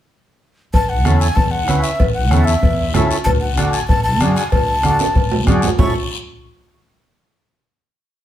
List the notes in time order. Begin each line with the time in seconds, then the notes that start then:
0.73 A1 A5, bombo low, cowbell, high conga, long guiro
0.89 F#5
1.05 E2 C#4 E4 A4, bombo rim, high conga, short guiro
1.20 G#5, short guiro
1.35 E2 A5, bombo low, cowbell, high conga, long guiro
1.51 F#5
1.68 C#2 C#4 E4 B4, bombo rim, high conga, short guiro
1.82 E5, short guiro
2.00 A1, bombo low, cowbell, high conga, long guiro
2.14 F#5
2.31 E2 C#4 E4 A4, bombo rim, high conga, short guiro
2.44 E5, short guiro
2.63 E2, bombo low, cowbell, high conga, long guiro
2.94 C#2 C#4 E4 A4, bombo rim, high conga, low conga, low timbale, short guiro
3.11 short guiro
3.24 D2 A5, bombo low, cowbell, high conga, long guiro
3.40 F#5
3.57 A1 D4 F#4 A4, bombo rim, high conga, short guiro
3.72 G#5, short guiro
3.88 A1 A5, bombo low, cowbell, high conga, long guiro
4.03 A5
4.20 F#2 D4 F#4 G#4, bombo rim, high conga, short guiro
4.36 G#5, bombo rim, short guiro
4.51 D2 A5, bombo low, cowbell, high conga, long guiro
4.83 A1 D4 F#4 A4, bombo rim, high conga, short guiro
4.99 high timbale, short guiro
5.15 A1, bombo low, cowbell, high conga, long guiro
5.31 low timbale
5.47 F#2 D4 F#4 G#4, bombo low, bombo rim, high conga, low conga, short guiro
5.62 low conga, low timbale, short guiro
5.78 A1 C#4 E4 A4 C#6, bombo low, low conga, low timbale, long guiro